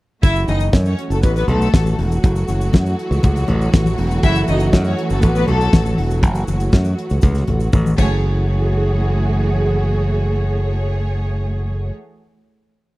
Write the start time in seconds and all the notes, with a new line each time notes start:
0.23 F#1 E3 F#3 A3 E4 F#4 E5, kick, closed hi-hat, muted conga, shaker
0.35 closed hi-hat, shaker
0.48 F#1 D#4 D#5, closed hi-hat, muted conga, shaker
0.60 closed hi-hat, shaker
0.73 F#2, kick, snare, high conga, shaker
0.85 C#4 C#5, closed hi-hat, shaker
0.99 closed hi-hat
1.10 F#1 A3 A4, closed hi-hat, shaker
1.23 A1 B3 B4, kick, closed hi-hat, shaker
1.36 B3 B4, snare, closed hi-hat, shaker
1.48 B1 A3 A4, closed hi-hat, muted conga, low conga
1.62 closed hi-hat, shaker
1.74 A1, kick, snare, high conga, shaker
1.85 closed hi-hat, high conga, shaker
1.99 E1, open hi-hat
2.12 closed hi-hat, shaker
2.24 F#1, kick, closed hi-hat, muted conga, shaker
2.36 closed hi-hat, shaker
2.48 F#1, closed hi-hat, muted conga, shaker
2.61 closed hi-hat, shaker
2.73 F#2, kick, snare, high conga, shaker
2.86 closed hi-hat, shaker
2.99 closed hi-hat
3.11 C#2, closed hi-hat, shaker
3.23 C#2, kick, closed hi-hat, muted conga, low conga, shaker
3.36 snare, closed hi-hat, shaker
3.48 A1, closed hi-hat, muted conga, low conga
3.61 closed hi-hat, shaker
3.73 A1, kick, snare, high conga, shaker
3.85 closed hi-hat, high conga, shaker
3.98 E1, open hi-hat
4.11 closed hi-hat, shaker
4.23 F#1 E4 E5, kick, closed hi-hat, muted conga, shaker
4.35 closed hi-hat, shaker
4.48 F#1 D#4 D#5, closed hi-hat, muted conga, shaker
4.60 closed hi-hat, shaker
4.73 F#2, kick, snare, high conga, shaker
4.84 C#4 C#5, closed hi-hat, shaker
4.98 closed hi-hat
5.10 F#1 A3 A4, closed hi-hat, shaker
5.22 A1 B3 B4, kick, closed hi-hat, muted conga, shaker
5.35 B3 B4, closed hi-hat, shaker
5.48 B1 A3 A4, closed hi-hat, muted conga, low conga
5.61 closed hi-hat, shaker
5.73 A1, kick, snare, high conga, shaker
5.85 closed hi-hat, high conga, shaker
5.98 E1, open hi-hat
6.11 closed hi-hat, shaker
6.23 F#1, kick, closed hi-hat, muted conga, shaker
6.35 closed hi-hat, shaker
6.48 F#1, closed hi-hat, muted conga, shaker
6.60 closed hi-hat, shaker
6.72 F#2, kick, snare, high conga, shaker
6.84 closed hi-hat, shaker
6.99 closed hi-hat
7.10 C#2, closed hi-hat, shaker
7.21 C#2, kick, closed hi-hat, muted conga, low conga, shaker
7.35 snare, closed hi-hat, shaker
7.47 A1, closed hi-hat, muted conga, low conga
7.60 closed hi-hat, shaker
7.73 A1, kick, high tom, high conga, shaker
7.86 high conga, shaker
7.98 F#1 E3 A3 F#4 G#4 C#5, kick, crash, muted conga, shaker